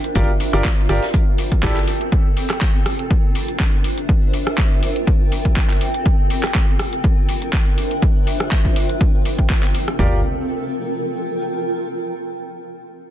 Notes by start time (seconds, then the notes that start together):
Already playing: D4 F4 C5 E5
0.04 closed hi-hat
0.15 G1 F4 G4 A#4 D5, kick, closed hi-hat
0.34 A#4
0.40 closed hi-hat, open hi-hat
0.47 G5
0.53 G1 F4 G4 A#4 D5, cross-stick
0.64 kick, snare, clap, closed hi-hat
0.89 G1 F4 G4 A#4 D5, cross-stick, closed hi-hat, open hi-hat
1.02 snare, closed hi-hat
1.14 C4, kick, closed hi-hat
1.38 closed hi-hat, open hi-hat
1.52 kick, closed hi-hat
1.63 A1 E4 G4 A4 D5, kick, snare, clap, closed hi-hat, open hi-hat
1.76 snare, clap
1.87 closed hi-hat, open hi-hat
2.01 closed hi-hat
2.12 F4, kick, closed hi-hat
2.37 open hi-hat
2.50 cross-stick, clap, closed hi-hat
2.57 A#4
2.61 kick, clap, closed hi-hat
2.86 cross-stick, open hi-hat
2.99 closed hi-hat
3.10 D4, kick, closed hi-hat
3.35 open hi-hat
3.44 C5 E5, closed hi-hat
3.59 kick, clap, closed hi-hat
3.84 F4, open hi-hat
3.98 closed hi-hat
4.03 A#4
4.09 kick, closed hi-hat
4.33 open hi-hat
4.40 G5
4.47 cross-stick, closed hi-hat
4.58 kick, clap, closed hi-hat
4.83 open hi-hat
4.96 closed hi-hat
5.07 C4, kick, closed hi-hat
5.32 open hi-hat
5.45 kick, closed hi-hat
5.56 kick, clap, closed hi-hat
5.70 clap
5.81 open hi-hat
5.94 closed hi-hat
6.06 F4, kick, closed hi-hat
6.30 open hi-hat
6.43 cross-stick, clap, closed hi-hat
6.50 A#4
6.54 kick, clap, closed hi-hat
6.79 cross-stick, open hi-hat
6.93 closed hi-hat
7.04 D4, kick, closed hi-hat
7.29 open hi-hat
7.37 C5 E5
7.42 closed hi-hat
7.53 kick, clap, closed hi-hat
7.78 F4, open hi-hat
7.91 closed hi-hat
8.02 kick, closed hi-hat
8.27 open hi-hat
8.34 A#4 G5
8.40 cross-stick, closed hi-hat
8.51 kick, clap, closed hi-hat
8.65 kick
8.76 open hi-hat
8.89 closed hi-hat
9.01 C4, kick, closed hi-hat
9.25 open hi-hat
9.39 kick, closed hi-hat
9.50 kick, clap, closed hi-hat
9.63 clap
9.75 open hi-hat
9.88 cross-stick, closed hi-hat
9.99 G1 F4 G4 A#4 D5, kick, floor tom
10.07 A#4
10.15 G5